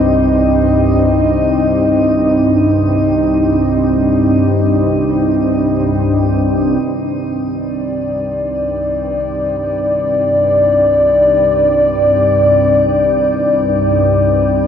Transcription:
0.00 6.81 C2 medium
0.00 6.82 G2 medium
0.00 14.67 C4 medium
0.00 14.67 D#4 medium
0.00 6.83 D#5 medium
6.82 14.67 C2 medium
6.82 14.67 G2 medium
7.53 14.67 D5 medium

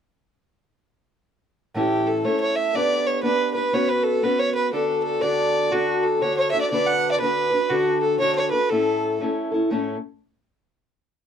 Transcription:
1.74 2.24 A2 medium
1.74 2.25 E3 medium
1.74 2.23 A3 medium
1.74 2.25 C#4 medium
1.74 2.25 E4 medium
1.74 2.08 G4 medium
1.74 2.25 A4 medium
2.06 2.26 A4 medium
2.24 2.74 A3 medium
2.24 2.75 C#4 medium
2.24 2.75 E4 medium
2.24 2.76 A4 medium
2.24 2.40 C#5 medium
2.40 2.57 C#5 medium
2.55 2.77 E5 medium
2.74 3.22 B3 medium
2.74 3.23 D4 medium
2.74 3.24 G4 medium
2.74 3.25 B4 medium
2.74 3.08 D5 medium
3.06 3.23 C#5 medium
3.23 3.54 B3 medium
3.23 3.55 D4 medium
3.23 3.55 G4 medium
3.23 3.52 B4 medium
3.23 3.53 B4 medium
3.54 3.74 D4 soft
3.54 3.74 G4 soft
3.54 3.75 B4 medium
3.54 3.73 B4 soft
3.73 4.22 B3 medium
3.73 4.23 C#4 medium
3.73 4.25 F#4 medium
3.73 4.24 B4 medium
3.73 3.90 C#5 medium
3.88 4.05 B4 medium
4.03 4.25 A4 medium
4.23 4.72 B3 medium
4.23 4.72 C#4 medium
4.23 4.74 F#4 medium
4.23 4.41 B4 medium
4.23 4.74 B4 medium
4.39 4.54 C#5 medium
4.55 4.72 B4 medium
4.72 5.21 D3 medium
4.72 5.22 D4 medium
4.72 5.23 F#4 medium
4.72 5.01 A4 medium
4.72 5.23 A4 medium
5.03 5.23 A4 medium
5.21 5.71 D3 medium
5.21 5.72 D4 medium
5.21 5.72 F#4 medium
5.21 5.72 A4 medium
5.21 5.73 D5 medium
5.71 6.21 D3 medium
5.71 6.22 D4 medium
5.71 6.04 F#4 medium
5.71 6.24 F#4 medium
5.71 6.22 A4 medium
6.03 6.23 A4 medium
6.21 6.52 D3 medium
6.21 6.53 D4 medium
6.21 6.53 F#4 medium
6.21 6.51 A4 medium
6.21 6.36 C#5 medium
6.37 6.51 C#5 medium
6.51 6.72 F#4 soft
6.51 6.71 A4 soft
6.51 6.61 E5 medium
6.56 6.71 D4 soft
6.61 6.70 D5 medium
6.70 7.20 D3 medium
6.70 7.21 D4 medium
6.70 7.22 F#4 medium
6.70 7.22 B4 medium
6.70 6.88 D5 medium
6.86 7.11 F#5 medium
7.12 7.19 D5 medium
7.20 7.52 D3 medium
7.20 7.52 D4 medium
7.20 7.52 F#4 medium
7.20 7.71 B4 medium
7.20 7.50 B4 medium
7.51 7.70 D4 soft
7.51 7.70 F#4 soft
7.51 7.70 B4 soft
7.70 8.19 D3 medium
7.70 8.20 D4 medium
7.70 8.00 F#4 medium
7.70 8.21 F#4 medium
7.70 8.23 A4 medium
8.01 8.19 A4 medium
8.20 8.51 D3 medium
8.20 8.52 D4 medium
8.20 8.52 F#4 medium
8.20 8.50 A4 medium
8.20 8.35 C#5 medium
8.35 8.50 C#5 medium
8.51 8.71 D4 soft
8.51 8.71 F#4 soft
8.51 8.70 A4 soft
8.51 8.71 B4 medium
8.70 9.20 A2 medium
8.70 9.20 A3 medium
8.70 9.21 C#4 medium
8.70 9.22 E4 medium
8.70 9.20 A4 medium
8.70 9.23 A4 medium
9.20 9.51 A3 medium
9.20 9.52 C#4 medium
9.20 9.52 E4 medium
9.20 9.50 A4 medium
9.51 9.71 C#4 soft
9.51 9.71 E4 soft
9.51 9.70 A4 soft
9.70 9.95 A2 medium
9.70 9.95 A3 medium
9.70 9.96 C#4 medium
9.70 9.96 E4 medium
9.70 9.96 A4 medium

